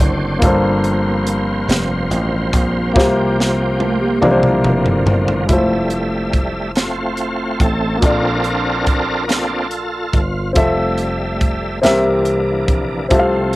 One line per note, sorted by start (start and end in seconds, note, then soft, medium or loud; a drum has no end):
0.00 0.39 F#1 medium
0.00 0.38 D3 medium
0.00 0.41 F#3 medium
0.00 0.41 A3 medium
0.00 5.44 C4 medium
0.00 0.41 D4 medium
0.00 0.42 D4 medium
0.00 0.37 E4 medium
0.00 0.46 F#4 medium
0.00 0.37 C5 medium
0.00 0.43 C5 medium
0.00 2.91 C5 medium
0.00 kick medium
0.00 closed hi-hat medium
0.39 1.65 G1 loud
0.39 2.91 F3 medium
0.39 2.90 A#3 medium
0.39 4.18 A#3 medium
0.39 2.91 F4 medium
0.39 kick loud
0.39 closed hi-hat medium
0.43 1.65 G2 medium
0.43 2.92 A4 medium
0.43 2.94 C5 medium
0.84 closed hi-hat soft
1.27 closed hi-hat medium
1.68 2.07 F1 medium
1.68 snare medium
1.68 closed hi-hat medium
2.11 2.50 A1 medium
2.11 closed hi-hat soft
2.53 2.92 A#1 medium
2.53 kick medium
2.53 closed hi-hat medium
2.92 4.19 F3 medium
2.92 4.20 A#3 medium
2.92 4.22 F4 medium
2.92 4.19 G4 medium
2.96 4.18 C2 medium
2.96 4.18 C3 medium
2.96 4.23 G4 medium
2.96 4.23 C5 medium
2.96 kick loud
2.96 snare medium
3.40 snare medium
3.80 4.00 A3 medium
3.80 4.00 F4 medium
3.80 high tom medium
4.01 4.22 A#3 medium
4.01 4.21 G4 medium
4.20 4.61 C2 medium
4.20 5.45 C3 medium
4.20 5.47 D3 medium
4.20 5.47 F3 medium
4.20 5.49 F3 medium
4.20 5.47 A#3 medium
4.20 5.48 A#3 medium
4.20 5.49 D4 medium
4.20 4.42 D4 medium
4.20 4.42 A#4 medium
4.20 mid tom medium
4.25 4.30 A#4 medium
4.31 5.51 C5 medium
4.43 5.45 E4 medium
4.43 5.45 C5 medium
4.43 mid tom medium
4.64 5.03 F1 medium
4.64 mid tom medium
4.86 floor tom medium
5.05 5.45 G1 medium
5.05 floor tom medium
5.28 floor tom medium
5.46 7.57 F1 medium
5.46 6.71 G3 soft
5.46 5.54 G#3 soft
5.46 6.72 A3 soft
5.46 7.98 E4 medium
5.46 6.72 E5 medium
5.46 kick loud
5.46 closed hi-hat medium
5.51 8.00 A3 medium
5.51 7.98 F4 medium
5.51 8.00 C5 medium
5.90 closed hi-hat soft
6.33 kick medium
6.33 closed hi-hat soft
6.76 7.98 A3 soft
6.76 7.99 C4 medium
6.76 7.63 F4 medium
6.76 snare medium
6.76 closed hi-hat medium
7.17 closed hi-hat soft
7.60 7.99 A1 medium
7.60 8.00 A4 medium
7.60 kick medium
7.60 closed hi-hat soft
7.97 10.50 A#3 medium
7.97 10.51 F4 soft
7.97 9.25 A4 soft
8.02 10.10 A#1 medium
8.02 9.25 A#2 medium
8.02 9.25 C4 soft
8.02 9.26 D4 medium
8.02 9.25 F4 medium
8.02 10.52 A4 soft
8.02 kick loud
8.02 closed hi-hat medium
8.06 9.35 A#4 loud
8.06 10.54 D5 medium
8.44 closed hi-hat soft
8.87 kick medium
8.87 closed hi-hat soft
9.28 9.67 A#3 soft
9.28 9.68 C4 soft
9.28 9.67 D4 medium
9.28 10.52 F4 medium
9.28 10.21 A4 medium
9.28 snare medium
9.28 closed hi-hat medium
9.71 closed hi-hat soft
10.13 10.53 G1 medium
10.13 kick medium
10.13 closed hi-hat soft
10.53 11.79 F1 medium
10.53 11.79 G3 soft
10.53 11.80 C4 medium
10.53 11.82 F4 medium
10.53 11.83 A4 medium
10.53 kick loud
10.53 closed hi-hat medium
10.57 11.80 A3 soft
10.57 11.80 E5 medium
10.57 11.83 E5 medium
10.98 closed hi-hat soft
11.41 kick medium
11.41 closed hi-hat soft
11.82 12.68 C2 medium
11.82 13.06 C3 medium
11.82 13.06 E3 medium
11.82 13.07 A#3 soft
11.82 13.07 C4 medium
11.82 13.07 D4 medium
11.82 13.10 G4 medium
11.82 13.10 A#4 medium
11.82 13.11 E5 medium
11.82 snare medium
11.82 closed hi-hat medium
12.25 closed hi-hat soft
12.68 13.07 A#1 medium
12.68 kick medium
12.68 closed hi-hat soft
13.09 13.56 C2 medium
13.09 13.56 C3 medium
13.09 13.56 F3 soft
13.09 13.56 A3 soft
13.09 13.56 C4 medium
13.09 13.56 F4 medium
13.09 13.56 A4 medium
13.09 kick loud
13.09 closed hi-hat medium
13.13 13.18 E5 medium
13.19 13.56 F5 medium
13.53 closed hi-hat soft